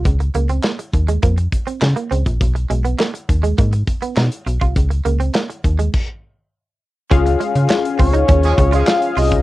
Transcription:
<<
  \new Staff \with { instrumentName = "Analog synth lead" } { \time 4/4 \key des \major \tempo 4 = 102 r1 | r1 | r1 | r4. des''4~ des''16 f''8. ees''8 | }
  \new Staff \with { instrumentName = "Analog polysynth" } { \time 4/4 \key des \major r1 | r1 | r1 | <des' f' aes' f''>1 | }
  \new Staff \with { instrumentName = "Clean electric guitar" } { \time 4/4 \key des \major r8 bes16 c'16 bes16 r8 aes16 bes16 r8 c'16 r16 bes16 c'16 r16 | r8 aes16 ces'16 bes16 r8 aes16 bes16 r8 ces'16 ees'16 r8 f'16 | r8 bes16 c'16 bes16 r8 aes16 r2 | des'16 r16 aes16 r8. c'16 ees'16 des'16 r8 f'16 r8 f'16 r16 | }
  \new Staff \with { instrumentName = "Horn section" } { \time 4/4 \key des \major r1 | r1 | r1 | r2 r16 <f aes des' aes'>16 r16 <f aes des' aes'>8. r8 | }
  \new Staff \with { instrumentName = "FM bass" } { \clef bass \time 4/4 \key des \major des,8 des,8 r8 ees,8 f,8 r8 des16 r16 des,16 bes,,16 | ces,8 ces,8 r8 ees,8 aes,8 r8 ces16 r16 ces,16 c,16 | des,8 des,8 r8 ees,8 r2 | des,8 r16 des16 r8 des,8 ees,8 des,8 r8 c,8 | }
  \new DrumStaff \with { instrumentName = "Drums" } \drummode { \time 4/4 <hh bd>16 hh16 hh16 hh16 <hc sn>16 hh16 <hh bd>16 hh16 <hh bd>16 hh16 <hh bd>16 hh16 <hc sn>16 hh16 hh16 <hh bd>16 | <hh bd>16 hh16 hh16 hh16 <hc sn>16 hh16 <hh bd>16 hh16 <hh bd>16 hh16 <hh bd>16 hh16 <hc sn>16 hh16 hh16 <hh bd>16 | <hh bd>16 hh16 hh16 hh16 <hc sn>16 hh16 <hh bd>16 hh16 <cymc bd>4 r4 | <hh bd>16 hh16 hh16 hh16 <hc sn>16 hh16 <hho bd>16 hh16 <hh bd>16 hh16 <hh bd>16 hh16 <hc sn>16 hh16 hho16 <hh bd>16 | }
>>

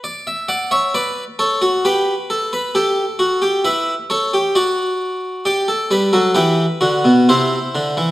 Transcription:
<<
  \new Staff \with { instrumentName = "Harpsichord" } { \time 3/4 \key g \major \tempo 4 = 66 << { d''16 e''16 fis''16 e''16 d''8 cis''8 b'4 | a'4 b'8 cis''8 d''4 | d''4 b'4 c''4 | } \\ { r8 d''16 cis''16 b'8 a'16 fis'16 g'8 a'16 b'16 | g'8 fis'16 g'16 e'8 a'16 g'16 fis'4 | g'16 a'16 b'16 a'16 g'8 fis'8 e'4 | } >> }
  \new Staff \with { instrumentName = "Harpsichord" } { \clef bass \time 3/4 \key g \major r2. | r2. | r8 g16 fis16 e8 d16 b,16 c8 d16 e16 | }
>>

